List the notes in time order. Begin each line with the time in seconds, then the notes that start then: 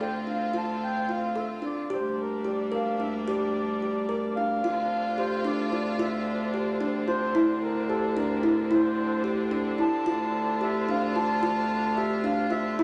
Already playing: D2 D3 C4 F4
0.01 A4 G5
0.27 D4 F5
0.53 F4
0.58 A5
0.84 G5
1.09 F4 F5
1.36 A4 E5
1.62 D4 D5
1.90 D2 G3 A#3 D4 G4 C5
2.21 A#4
2.45 G4 D5
2.72 A#4 F5
3.00 D4 E5
3.28 G4 D5
3.82 G4
4.09 A#4
4.36 D4 F5
4.63 D2 D3 C4 D4 F4
5.18 G4 C5
5.45 D4 D5
5.72 F4
5.99 F4 E5
6.54 G4
6.81 D4
7.07 F4 C5
7.35 D2 E4
7.63 A#4
7.89 G4 A4
8.17 D4 A#4
8.43 E4
8.71 E4 C5
9.24 G4
9.51 D4
9.78 E4 A5
10.06 D2 F4
10.61 G4 E5
10.89 D4 F5
11.16 F4 A5
11.43 F4
11.97 G4 E5
12.24 D4 F5
12.51 F4 E5
12.78 D2 D3 C4 E4